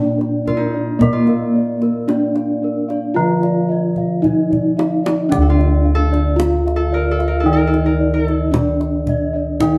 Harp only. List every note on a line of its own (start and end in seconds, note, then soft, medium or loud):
0.00 0.47 F4 loud
0.47 1.12 F4 medium
0.57 3.24 D#4 medium
1.13 3.65 F4 medium
5.42 5.94 A4 medium
5.50 8.02 F4 medium
5.95 6.76 A4 loud
6.76 7.00 A4 medium
6.94 7.17 A#4 medium
7.11 7.34 A4 medium
7.28 7.46 A#4 medium
7.40 7.59 A4 medium
7.53 7.73 A#4 medium
7.67 7.92 A4 medium
7.86 8.14 A#4 medium
8.14 8.28 A#4 medium
8.28 9.78 A4 medium